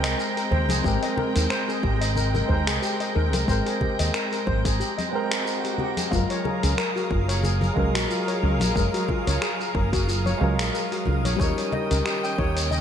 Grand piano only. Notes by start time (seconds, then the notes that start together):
Already playing: G#3 C4 A#4 G5
0.81 G#3 C4
0.86 A#4 G5
2.46 G#3 C4 G5
2.52 A#4
3.45 G#3 C4 G5
3.51 A#4
5.09 G#3 C4
5.13 A#4 G5
6.09 G#3 F5
6.13 F#3 A#4
7.74 F#3 G#3 F5
7.79 A#4
8.73 G#3 F5
8.77 F#3 A#4
10.38 G#3 F5
10.42 F#3 A#4
11.36 G3 C#4
11.40 D#4 A#4